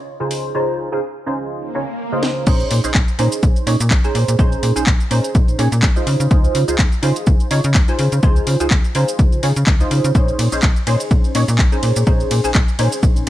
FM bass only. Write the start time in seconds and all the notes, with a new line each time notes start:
2.47 A#1
2.71 A#2
2.84 A#1
2.95 A#1
3.19 A#2
3.43 A#1
3.67 A#2
3.80 A#2
3.91 A#1
4.15 A#2
4.28 A#2
4.39 A#1
4.63 A#2
4.76 A#1
4.87 A#1
5.11 A#2
5.35 A#1
5.48 A#2
5.59 A#2
5.72 A#2
5.83 A#1
6.07 C#3
6.20 C#3
6.31 C#2
6.55 C#3
6.68 C#2
6.79 C#2
7.03 C#3
7.27 C#2
7.51 C#3
7.64 C#3
7.75 C#2
7.99 C#3
8.12 C#3
8.23 C#2
8.47 C#3
8.60 C#2
8.71 C#2
8.95 C#3
9.19 C#2
9.33 C#3
9.43 C#3
9.56 C#3
9.67 C#2
9.91 C#3
10.04 C#3
10.15 A#1
10.39 A#2
10.52 A#1
10.63 A#1
10.87 A#2
11.11 A#1
11.35 A#2
11.48 A#2
11.59 A#1
11.83 A#2
11.96 A#2
12.07 A#1
12.31 A#2
12.44 A#1
12.55 A#1
12.79 A#2
13.03 A#1
13.16 A#2